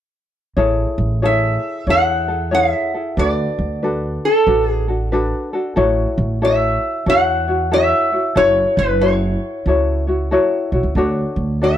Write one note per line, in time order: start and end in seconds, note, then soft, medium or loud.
0.57 0.84 A1 medium
0.57 1.21 E4 medium
0.57 1.22 G#4 medium
0.57 1.23 A4 medium
0.57 1.21 C#5 medium
0.98 1.56 A1 medium
1.22 1.87 E4 medium
1.22 1.88 G#4 medium
1.22 1.89 A4 medium
1.22 1.86 C#5 medium
1.22 1.85 E5 medium
1.87 2.71 E2 medium
1.87 2.29 E4 medium
1.87 2.28 G#4 medium
1.87 2.27 A4 medium
1.87 2.28 C#5 medium
1.87 2.54 F#5 medium
2.28 2.51 E4 soft
2.28 2.51 G#4 soft
2.28 2.51 A4 soft
2.51 2.93 E4 medium
2.51 2.93 G#4 medium
2.51 2.93 A4 medium
2.51 2.93 C#5 medium
2.51 3.19 E5 medium
2.94 3.18 E4 soft
2.94 3.17 G#4 soft
2.94 3.17 A4 soft
3.17 3.44 D2 medium
3.17 3.82 D4 medium
3.17 3.84 F#4 medium
3.17 3.84 A4 medium
3.17 3.81 B4 medium
3.17 4.28 D5 medium
3.59 4.16 D2 medium
3.83 4.46 D4 medium
3.83 4.47 F#4 medium
3.83 4.48 A4 medium
3.83 4.46 B4 medium
4.25 4.68 A4 medium
4.47 5.31 A1 medium
4.47 4.88 D4 medium
4.47 4.88 F#4 medium
4.47 4.87 A4 medium
4.47 4.87 B4 medium
4.68 4.85 G#4 medium
4.88 5.11 D4 soft
4.88 5.12 F#4 soft
4.88 5.12 A4 soft
5.12 5.54 D4 medium
5.12 5.53 F#4 medium
5.12 5.52 A4 medium
5.12 5.53 B4 medium
5.53 5.77 D4 soft
5.53 5.76 F#4 soft
5.53 5.75 A4 medium
5.76 6.04 A1 medium
5.76 6.41 E4 medium
5.76 6.42 F#4 medium
5.76 6.41 A4 medium
5.76 6.43 C#5 medium
6.18 6.75 A1 medium
6.42 7.06 E4 medium
6.42 7.07 F#4 medium
6.42 7.06 A4 medium
6.42 7.08 C#5 medium
6.42 7.09 E5 medium
7.06 7.91 E2 medium
7.06 7.48 E4 medium
7.06 7.48 F#4 medium
7.06 7.48 A4 medium
7.06 7.47 C#5 medium
7.06 7.73 F#5 loud
7.48 7.71 E4 soft
7.48 7.71 F#4 medium
7.48 7.72 C#5 medium
7.71 8.13 E4 medium
7.71 8.12 F#4 medium
7.71 8.13 A4 medium
7.71 8.11 C#5 medium
7.71 8.39 E5 medium
8.12 8.35 E4 soft
8.12 8.35 F#4 soft
8.12 8.36 C#5 soft
8.35 8.63 F#1 medium
8.35 9.00 E4 medium
8.35 9.01 F#4 medium
8.35 9.00 A4 medium
8.35 9.02 C#5 medium
8.35 8.79 C#5 medium
8.77 9.35 F#1 medium
8.77 9.03 B4 medium
9.01 9.66 E4 medium
9.01 9.68 F#4 medium
9.01 9.66 A4 medium
9.01 10.68 C#5 medium
9.01 9.68 C#5 medium
9.66 10.35 C#2 medium
9.66 10.08 E4 medium
9.66 10.07 F#4 medium
9.66 10.08 A4 medium
9.66 10.06 C#5 medium
10.07 10.31 E4 soft
10.07 10.31 F#4 soft
10.07 10.31 C#5 soft
10.31 10.73 E4 medium
10.31 10.72 F#4 medium
10.31 10.72 A4 medium
10.31 10.71 C#5 medium
10.72 10.83 B1 medium
10.72 10.97 E4 soft
10.72 10.96 F#4 soft
10.72 10.96 C#5 medium
10.83 10.94 C#2 medium
10.95 11.22 D2 medium
10.95 11.61 D4 medium
10.95 11.62 F#4 medium
10.95 11.61 A4 medium
10.95 11.62 C#5 medium
11.36 11.78 D2 medium
11.62 11.78 D4 medium
11.62 11.78 F#4 medium
11.62 11.78 A4 medium
11.62 11.78 C#5 medium
11.62 11.78 E5 medium